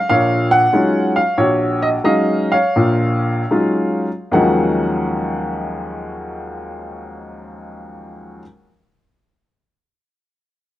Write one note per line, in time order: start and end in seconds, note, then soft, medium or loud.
0.09 0.64 A#1 medium
0.09 0.64 A#2 medium
0.09 1.33 C#5 medium
0.09 0.52 F5 medium
0.51 1.11 F#5 loud
0.73 1.17 F#3 medium
0.73 1.17 G#3 soft
0.73 1.18 C#4 soft
0.73 1.18 D#4 soft
0.73 1.18 F4 medium
1.16 1.36 F5 medium
1.38 1.96 A#1 medium
1.38 2.72 F#4 medium
1.38 1.79 C#5 medium
1.82 1.87 D#5 medium
2.04 2.53 F#3 medium
2.04 2.53 G#3 soft
2.04 2.54 C#4 soft
2.04 2.54 D#4 medium
2.04 2.53 D#5 medium
2.04 2.50 F5 medium
2.52 4.01 C#5 medium
2.52 4.00 F5 medium
2.76 3.42 A#1 medium
2.76 3.42 A#2 medium
3.51 4.07 F#3 medium
3.51 4.07 G#3 soft
3.51 4.07 C#4 soft
3.51 4.07 D#4 soft
3.51 4.07 F4 medium
4.32 8.40 D#2 medium
4.32 8.41 D#3 medium
4.32 8.43 F3 medium
4.32 8.42 F#3 medium
4.32 8.42 G#3 medium
4.32 8.43 C#4 medium
4.32 8.38 F#5 medium